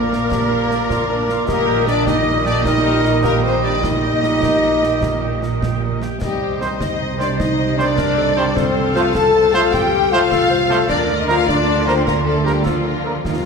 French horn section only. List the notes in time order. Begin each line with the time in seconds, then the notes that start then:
Already playing: A#3
1.48 A#3
1.87 D4
2.07 D#4
2.45 D4
2.64 D#4
3.24 A#3
3.43 C4
3.64 D4
3.82 D#4
6.20 G3
6.61 C4
6.80 D#4
7.19 D4
7.39 D#4
7.76 D4
8.56 C4
8.95 F4
9.15 A4
9.54 F4
9.74 G4
10.12 F4
10.90 D4
11.20 D#4
11.30 F4
11.49 D4
11.87 C4
12.06 A#3
12.27 A3
12.46 G3
12.65 F3
13.25 F3